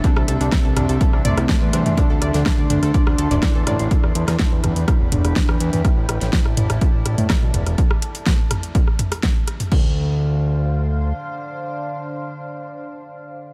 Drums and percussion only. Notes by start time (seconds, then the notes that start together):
0.04 kick, closed hi-hat
0.17 cross-stick
0.28 closed hi-hat
0.41 closed hi-hat
0.52 kick, cross-stick, snare, closed hi-hat
0.77 cross-stick, closed hi-hat, mid tom
0.89 closed hi-hat
1.01 kick, closed hi-hat
1.13 cross-stick
1.25 closed hi-hat, mid tom
1.38 cross-stick, closed hi-hat
1.49 kick, snare, closed hi-hat
1.73 cross-stick, closed hi-hat
1.86 closed hi-hat, mid tom
1.98 kick, closed hi-hat
2.22 cross-stick, closed hi-hat
2.34 snare, closed hi-hat
2.46 kick, cross-stick, snare, closed hi-hat
2.70 closed hi-hat, mid tom
2.83 cross-stick, closed hi-hat
2.94 kick, closed hi-hat
3.07 cross-stick
3.18 closed hi-hat
3.31 closed hi-hat, mid tom
3.43 kick, cross-stick, snare, closed hi-hat
3.67 cross-stick, closed hi-hat, mid tom
3.79 closed hi-hat
3.91 kick, closed hi-hat
4.04 cross-stick
4.15 closed hi-hat
4.28 cross-stick, snare, closed hi-hat
4.39 kick, snare, closed hi-hat
4.64 cross-stick, closed hi-hat, mid tom
4.76 closed hi-hat
4.88 kick, cross-stick, closed hi-hat
5.12 closed hi-hat, mid tom
5.25 cross-stick, closed hi-hat
5.36 kick, snare, closed hi-hat
5.49 cross-stick
5.60 closed hi-hat
5.73 closed hi-hat, mid tom
5.85 kick, cross-stick, closed hi-hat
6.09 cross-stick, closed hi-hat
6.21 snare, closed hi-hat
6.33 kick, snare, closed hi-hat
6.46 cross-stick
6.57 closed hi-hat, mid tom
6.70 cross-stick, closed hi-hat
6.81 kick, closed hi-hat
7.06 cross-stick, closed hi-hat
7.18 closed hi-hat, mid tom
7.30 kick, cross-stick, snare, closed hi-hat
7.54 closed hi-hat, mid tom
7.67 cross-stick, closed hi-hat
7.78 kick, closed hi-hat
7.91 cross-stick
8.02 closed hi-hat
8.15 closed hi-hat
8.26 kick, cross-stick, snare, closed hi-hat
8.51 cross-stick, closed hi-hat, mid tom
8.63 closed hi-hat
8.75 kick, closed hi-hat
8.87 cross-stick
8.99 closed hi-hat, mid tom
9.12 cross-stick, closed hi-hat
9.23 kick, snare, closed hi-hat
9.48 cross-stick, closed hi-hat
9.60 closed hi-hat, mid tom
9.72 kick, crash